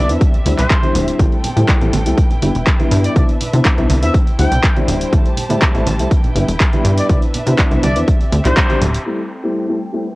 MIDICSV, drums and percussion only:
0, 0, Header, 1, 2, 480
1, 0, Start_track
1, 0, Key_signature, 0, "minor"
1, 0, Tempo, 491803
1, 1164, Time_signature, 4, 2, 24, 8
1, 9907, End_track
2, 0, Start_track
2, 0, Title_t, "Drums"
2, 89, Note_on_c, 9, 42, 47
2, 96, Note_on_c, 9, 82, 70
2, 187, Note_off_c, 9, 42, 0
2, 193, Note_off_c, 9, 82, 0
2, 201, Note_on_c, 9, 82, 62
2, 203, Note_on_c, 9, 36, 122
2, 205, Note_on_c, 9, 42, 52
2, 298, Note_off_c, 9, 82, 0
2, 301, Note_off_c, 9, 36, 0
2, 303, Note_off_c, 9, 42, 0
2, 331, Note_on_c, 9, 42, 25
2, 336, Note_on_c, 9, 82, 38
2, 428, Note_off_c, 9, 42, 0
2, 433, Note_off_c, 9, 82, 0
2, 443, Note_on_c, 9, 63, 68
2, 446, Note_on_c, 9, 46, 103
2, 540, Note_off_c, 9, 63, 0
2, 543, Note_off_c, 9, 46, 0
2, 570, Note_on_c, 9, 64, 81
2, 571, Note_on_c, 9, 42, 49
2, 572, Note_on_c, 9, 39, 35
2, 575, Note_on_c, 9, 82, 74
2, 667, Note_off_c, 9, 64, 0
2, 669, Note_off_c, 9, 39, 0
2, 669, Note_off_c, 9, 42, 0
2, 673, Note_off_c, 9, 82, 0
2, 684, Note_on_c, 9, 36, 126
2, 687, Note_on_c, 9, 42, 51
2, 688, Note_on_c, 9, 39, 117
2, 782, Note_off_c, 9, 36, 0
2, 785, Note_off_c, 9, 42, 0
2, 786, Note_off_c, 9, 39, 0
2, 807, Note_on_c, 9, 63, 99
2, 812, Note_on_c, 9, 42, 24
2, 817, Note_on_c, 9, 82, 38
2, 904, Note_off_c, 9, 63, 0
2, 910, Note_off_c, 9, 42, 0
2, 915, Note_off_c, 9, 82, 0
2, 925, Note_on_c, 9, 64, 81
2, 927, Note_on_c, 9, 46, 111
2, 1023, Note_off_c, 9, 64, 0
2, 1024, Note_off_c, 9, 46, 0
2, 1049, Note_on_c, 9, 82, 76
2, 1052, Note_on_c, 9, 42, 51
2, 1146, Note_off_c, 9, 82, 0
2, 1149, Note_off_c, 9, 42, 0
2, 1165, Note_on_c, 9, 36, 116
2, 1165, Note_on_c, 9, 82, 56
2, 1166, Note_on_c, 9, 42, 51
2, 1170, Note_on_c, 9, 63, 91
2, 1262, Note_off_c, 9, 36, 0
2, 1262, Note_off_c, 9, 82, 0
2, 1264, Note_off_c, 9, 42, 0
2, 1267, Note_off_c, 9, 63, 0
2, 1291, Note_on_c, 9, 42, 25
2, 1297, Note_on_c, 9, 82, 37
2, 1388, Note_off_c, 9, 42, 0
2, 1394, Note_off_c, 9, 82, 0
2, 1406, Note_on_c, 9, 46, 110
2, 1408, Note_on_c, 9, 64, 80
2, 1504, Note_off_c, 9, 46, 0
2, 1506, Note_off_c, 9, 64, 0
2, 1528, Note_on_c, 9, 63, 56
2, 1531, Note_on_c, 9, 42, 47
2, 1532, Note_on_c, 9, 82, 66
2, 1625, Note_off_c, 9, 63, 0
2, 1629, Note_off_c, 9, 42, 0
2, 1630, Note_off_c, 9, 82, 0
2, 1644, Note_on_c, 9, 36, 120
2, 1647, Note_on_c, 9, 39, 114
2, 1647, Note_on_c, 9, 42, 54
2, 1742, Note_off_c, 9, 36, 0
2, 1744, Note_off_c, 9, 42, 0
2, 1745, Note_off_c, 9, 39, 0
2, 1771, Note_on_c, 9, 42, 27
2, 1771, Note_on_c, 9, 82, 37
2, 1868, Note_off_c, 9, 82, 0
2, 1869, Note_off_c, 9, 42, 0
2, 1887, Note_on_c, 9, 46, 105
2, 1889, Note_on_c, 9, 63, 97
2, 1984, Note_off_c, 9, 46, 0
2, 1987, Note_off_c, 9, 63, 0
2, 2011, Note_on_c, 9, 42, 50
2, 2015, Note_on_c, 9, 82, 76
2, 2109, Note_off_c, 9, 42, 0
2, 2113, Note_off_c, 9, 82, 0
2, 2125, Note_on_c, 9, 36, 116
2, 2127, Note_on_c, 9, 42, 50
2, 2137, Note_on_c, 9, 82, 60
2, 2222, Note_off_c, 9, 36, 0
2, 2225, Note_off_c, 9, 42, 0
2, 2235, Note_off_c, 9, 82, 0
2, 2244, Note_on_c, 9, 64, 78
2, 2252, Note_on_c, 9, 42, 25
2, 2259, Note_on_c, 9, 82, 43
2, 2342, Note_off_c, 9, 64, 0
2, 2350, Note_off_c, 9, 42, 0
2, 2356, Note_off_c, 9, 82, 0
2, 2366, Note_on_c, 9, 46, 102
2, 2368, Note_on_c, 9, 63, 66
2, 2464, Note_off_c, 9, 46, 0
2, 2465, Note_off_c, 9, 63, 0
2, 2491, Note_on_c, 9, 42, 51
2, 2491, Note_on_c, 9, 82, 70
2, 2588, Note_off_c, 9, 82, 0
2, 2589, Note_off_c, 9, 42, 0
2, 2605, Note_on_c, 9, 36, 123
2, 2607, Note_on_c, 9, 39, 110
2, 2607, Note_on_c, 9, 42, 50
2, 2702, Note_off_c, 9, 36, 0
2, 2704, Note_off_c, 9, 42, 0
2, 2705, Note_off_c, 9, 39, 0
2, 2730, Note_on_c, 9, 63, 88
2, 2731, Note_on_c, 9, 42, 25
2, 2737, Note_on_c, 9, 82, 36
2, 2828, Note_off_c, 9, 63, 0
2, 2829, Note_off_c, 9, 42, 0
2, 2835, Note_off_c, 9, 82, 0
2, 2842, Note_on_c, 9, 64, 82
2, 2845, Note_on_c, 9, 46, 114
2, 2939, Note_off_c, 9, 64, 0
2, 2943, Note_off_c, 9, 46, 0
2, 2971, Note_on_c, 9, 42, 53
2, 2974, Note_on_c, 9, 82, 71
2, 3068, Note_off_c, 9, 42, 0
2, 3071, Note_off_c, 9, 82, 0
2, 3081, Note_on_c, 9, 82, 65
2, 3084, Note_on_c, 9, 36, 116
2, 3086, Note_on_c, 9, 42, 54
2, 3088, Note_on_c, 9, 63, 86
2, 3179, Note_off_c, 9, 82, 0
2, 3182, Note_off_c, 9, 36, 0
2, 3184, Note_off_c, 9, 42, 0
2, 3186, Note_off_c, 9, 63, 0
2, 3202, Note_on_c, 9, 82, 45
2, 3211, Note_on_c, 9, 42, 26
2, 3300, Note_off_c, 9, 82, 0
2, 3309, Note_off_c, 9, 42, 0
2, 3326, Note_on_c, 9, 46, 109
2, 3329, Note_on_c, 9, 64, 72
2, 3424, Note_off_c, 9, 46, 0
2, 3426, Note_off_c, 9, 64, 0
2, 3449, Note_on_c, 9, 82, 74
2, 3450, Note_on_c, 9, 42, 49
2, 3451, Note_on_c, 9, 63, 63
2, 3546, Note_off_c, 9, 82, 0
2, 3547, Note_off_c, 9, 42, 0
2, 3549, Note_off_c, 9, 63, 0
2, 3564, Note_on_c, 9, 36, 119
2, 3565, Note_on_c, 9, 39, 114
2, 3565, Note_on_c, 9, 42, 53
2, 3662, Note_off_c, 9, 36, 0
2, 3662, Note_off_c, 9, 42, 0
2, 3663, Note_off_c, 9, 39, 0
2, 3682, Note_on_c, 9, 82, 40
2, 3690, Note_on_c, 9, 42, 26
2, 3779, Note_off_c, 9, 82, 0
2, 3787, Note_off_c, 9, 42, 0
2, 3796, Note_on_c, 9, 63, 83
2, 3804, Note_on_c, 9, 46, 103
2, 3894, Note_off_c, 9, 63, 0
2, 3902, Note_off_c, 9, 46, 0
2, 3929, Note_on_c, 9, 82, 89
2, 3930, Note_on_c, 9, 42, 50
2, 4026, Note_off_c, 9, 82, 0
2, 4028, Note_off_c, 9, 42, 0
2, 4042, Note_on_c, 9, 82, 69
2, 4043, Note_on_c, 9, 36, 113
2, 4046, Note_on_c, 9, 42, 51
2, 4139, Note_off_c, 9, 82, 0
2, 4141, Note_off_c, 9, 36, 0
2, 4143, Note_off_c, 9, 42, 0
2, 4169, Note_on_c, 9, 42, 26
2, 4171, Note_on_c, 9, 82, 40
2, 4267, Note_off_c, 9, 42, 0
2, 4269, Note_off_c, 9, 82, 0
2, 4279, Note_on_c, 9, 63, 64
2, 4284, Note_on_c, 9, 46, 98
2, 4376, Note_off_c, 9, 63, 0
2, 4381, Note_off_c, 9, 46, 0
2, 4400, Note_on_c, 9, 82, 71
2, 4407, Note_on_c, 9, 64, 74
2, 4409, Note_on_c, 9, 42, 52
2, 4498, Note_off_c, 9, 82, 0
2, 4504, Note_off_c, 9, 64, 0
2, 4506, Note_off_c, 9, 42, 0
2, 4523, Note_on_c, 9, 36, 112
2, 4525, Note_on_c, 9, 42, 52
2, 4526, Note_on_c, 9, 39, 112
2, 4621, Note_off_c, 9, 36, 0
2, 4623, Note_off_c, 9, 39, 0
2, 4623, Note_off_c, 9, 42, 0
2, 4649, Note_on_c, 9, 42, 25
2, 4655, Note_on_c, 9, 82, 36
2, 4657, Note_on_c, 9, 63, 100
2, 4747, Note_off_c, 9, 42, 0
2, 4753, Note_off_c, 9, 82, 0
2, 4755, Note_off_c, 9, 63, 0
2, 4761, Note_on_c, 9, 64, 75
2, 4765, Note_on_c, 9, 46, 107
2, 4858, Note_off_c, 9, 64, 0
2, 4862, Note_off_c, 9, 46, 0
2, 4890, Note_on_c, 9, 42, 52
2, 4895, Note_on_c, 9, 82, 68
2, 4988, Note_off_c, 9, 42, 0
2, 4993, Note_off_c, 9, 82, 0
2, 5003, Note_on_c, 9, 36, 118
2, 5006, Note_on_c, 9, 42, 57
2, 5008, Note_on_c, 9, 82, 68
2, 5009, Note_on_c, 9, 63, 90
2, 5101, Note_off_c, 9, 36, 0
2, 5103, Note_off_c, 9, 42, 0
2, 5105, Note_off_c, 9, 82, 0
2, 5106, Note_off_c, 9, 63, 0
2, 5130, Note_on_c, 9, 42, 28
2, 5130, Note_on_c, 9, 82, 46
2, 5227, Note_off_c, 9, 42, 0
2, 5227, Note_off_c, 9, 82, 0
2, 5239, Note_on_c, 9, 64, 72
2, 5244, Note_on_c, 9, 46, 105
2, 5336, Note_off_c, 9, 64, 0
2, 5342, Note_off_c, 9, 46, 0
2, 5360, Note_on_c, 9, 63, 65
2, 5367, Note_on_c, 9, 82, 70
2, 5369, Note_on_c, 9, 42, 52
2, 5458, Note_off_c, 9, 63, 0
2, 5465, Note_off_c, 9, 82, 0
2, 5466, Note_off_c, 9, 42, 0
2, 5478, Note_on_c, 9, 82, 64
2, 5483, Note_on_c, 9, 36, 115
2, 5484, Note_on_c, 9, 42, 56
2, 5485, Note_on_c, 9, 39, 118
2, 5576, Note_off_c, 9, 82, 0
2, 5581, Note_off_c, 9, 36, 0
2, 5582, Note_off_c, 9, 39, 0
2, 5582, Note_off_c, 9, 42, 0
2, 5609, Note_on_c, 9, 42, 26
2, 5611, Note_on_c, 9, 82, 44
2, 5707, Note_off_c, 9, 42, 0
2, 5709, Note_off_c, 9, 82, 0
2, 5717, Note_on_c, 9, 63, 96
2, 5725, Note_on_c, 9, 46, 102
2, 5814, Note_off_c, 9, 63, 0
2, 5823, Note_off_c, 9, 46, 0
2, 5847, Note_on_c, 9, 82, 78
2, 5849, Note_on_c, 9, 42, 52
2, 5944, Note_off_c, 9, 82, 0
2, 5947, Note_off_c, 9, 42, 0
2, 5963, Note_on_c, 9, 36, 109
2, 5965, Note_on_c, 9, 42, 56
2, 5969, Note_on_c, 9, 82, 69
2, 6061, Note_off_c, 9, 36, 0
2, 6063, Note_off_c, 9, 42, 0
2, 6066, Note_off_c, 9, 82, 0
2, 6084, Note_on_c, 9, 82, 43
2, 6088, Note_on_c, 9, 64, 86
2, 6090, Note_on_c, 9, 42, 27
2, 6182, Note_off_c, 9, 82, 0
2, 6186, Note_off_c, 9, 64, 0
2, 6188, Note_off_c, 9, 42, 0
2, 6204, Note_on_c, 9, 63, 62
2, 6205, Note_on_c, 9, 46, 96
2, 6302, Note_off_c, 9, 46, 0
2, 6302, Note_off_c, 9, 63, 0
2, 6329, Note_on_c, 9, 42, 57
2, 6333, Note_on_c, 9, 82, 73
2, 6426, Note_off_c, 9, 42, 0
2, 6431, Note_off_c, 9, 82, 0
2, 6443, Note_on_c, 9, 82, 69
2, 6444, Note_on_c, 9, 36, 116
2, 6445, Note_on_c, 9, 42, 57
2, 6446, Note_on_c, 9, 39, 114
2, 6540, Note_off_c, 9, 82, 0
2, 6541, Note_off_c, 9, 36, 0
2, 6543, Note_off_c, 9, 39, 0
2, 6543, Note_off_c, 9, 42, 0
2, 6565, Note_on_c, 9, 82, 44
2, 6569, Note_on_c, 9, 42, 26
2, 6569, Note_on_c, 9, 63, 89
2, 6662, Note_off_c, 9, 82, 0
2, 6667, Note_off_c, 9, 42, 0
2, 6667, Note_off_c, 9, 63, 0
2, 6684, Note_on_c, 9, 46, 107
2, 6688, Note_on_c, 9, 64, 74
2, 6781, Note_off_c, 9, 46, 0
2, 6786, Note_off_c, 9, 64, 0
2, 6808, Note_on_c, 9, 42, 58
2, 6812, Note_on_c, 9, 82, 81
2, 6905, Note_off_c, 9, 42, 0
2, 6909, Note_off_c, 9, 82, 0
2, 6923, Note_on_c, 9, 63, 77
2, 6924, Note_on_c, 9, 36, 110
2, 6924, Note_on_c, 9, 42, 54
2, 6927, Note_on_c, 9, 82, 64
2, 7020, Note_off_c, 9, 63, 0
2, 7021, Note_off_c, 9, 36, 0
2, 7021, Note_off_c, 9, 42, 0
2, 7025, Note_off_c, 9, 82, 0
2, 7049, Note_on_c, 9, 42, 29
2, 7056, Note_on_c, 9, 82, 39
2, 7147, Note_off_c, 9, 42, 0
2, 7153, Note_off_c, 9, 82, 0
2, 7165, Note_on_c, 9, 46, 106
2, 7170, Note_on_c, 9, 64, 75
2, 7263, Note_off_c, 9, 46, 0
2, 7267, Note_off_c, 9, 64, 0
2, 7287, Note_on_c, 9, 63, 60
2, 7287, Note_on_c, 9, 82, 84
2, 7289, Note_on_c, 9, 42, 52
2, 7384, Note_off_c, 9, 63, 0
2, 7385, Note_off_c, 9, 82, 0
2, 7387, Note_off_c, 9, 42, 0
2, 7404, Note_on_c, 9, 36, 111
2, 7404, Note_on_c, 9, 82, 64
2, 7405, Note_on_c, 9, 42, 54
2, 7406, Note_on_c, 9, 39, 123
2, 7502, Note_off_c, 9, 36, 0
2, 7502, Note_off_c, 9, 82, 0
2, 7503, Note_off_c, 9, 39, 0
2, 7503, Note_off_c, 9, 42, 0
2, 7525, Note_on_c, 9, 82, 41
2, 7530, Note_on_c, 9, 42, 27
2, 7622, Note_off_c, 9, 82, 0
2, 7628, Note_off_c, 9, 42, 0
2, 7637, Note_on_c, 9, 63, 102
2, 7645, Note_on_c, 9, 46, 102
2, 7735, Note_off_c, 9, 63, 0
2, 7742, Note_off_c, 9, 46, 0
2, 7769, Note_on_c, 9, 42, 55
2, 7770, Note_on_c, 9, 82, 93
2, 7866, Note_off_c, 9, 42, 0
2, 7868, Note_off_c, 9, 82, 0
2, 7884, Note_on_c, 9, 42, 57
2, 7885, Note_on_c, 9, 36, 111
2, 7885, Note_on_c, 9, 82, 66
2, 7982, Note_off_c, 9, 36, 0
2, 7982, Note_off_c, 9, 42, 0
2, 7983, Note_off_c, 9, 82, 0
2, 8010, Note_on_c, 9, 42, 28
2, 8018, Note_on_c, 9, 82, 41
2, 8108, Note_off_c, 9, 42, 0
2, 8116, Note_off_c, 9, 82, 0
2, 8123, Note_on_c, 9, 63, 63
2, 8125, Note_on_c, 9, 46, 99
2, 8221, Note_off_c, 9, 63, 0
2, 8223, Note_off_c, 9, 46, 0
2, 8247, Note_on_c, 9, 82, 83
2, 8249, Note_on_c, 9, 42, 56
2, 8250, Note_on_c, 9, 39, 36
2, 8251, Note_on_c, 9, 64, 76
2, 8345, Note_off_c, 9, 82, 0
2, 8347, Note_off_c, 9, 42, 0
2, 8348, Note_off_c, 9, 39, 0
2, 8349, Note_off_c, 9, 64, 0
2, 8364, Note_on_c, 9, 36, 122
2, 8366, Note_on_c, 9, 39, 117
2, 8366, Note_on_c, 9, 42, 56
2, 8369, Note_on_c, 9, 82, 75
2, 8462, Note_off_c, 9, 36, 0
2, 8463, Note_off_c, 9, 42, 0
2, 8464, Note_off_c, 9, 39, 0
2, 8467, Note_off_c, 9, 82, 0
2, 8486, Note_on_c, 9, 82, 38
2, 8491, Note_on_c, 9, 42, 26
2, 8495, Note_on_c, 9, 63, 94
2, 8584, Note_off_c, 9, 82, 0
2, 8588, Note_off_c, 9, 42, 0
2, 8593, Note_off_c, 9, 63, 0
2, 8605, Note_on_c, 9, 64, 76
2, 8606, Note_on_c, 9, 46, 105
2, 8702, Note_off_c, 9, 64, 0
2, 8703, Note_off_c, 9, 46, 0
2, 8731, Note_on_c, 9, 42, 60
2, 8733, Note_on_c, 9, 82, 84
2, 8829, Note_off_c, 9, 42, 0
2, 8830, Note_off_c, 9, 82, 0
2, 9907, End_track
0, 0, End_of_file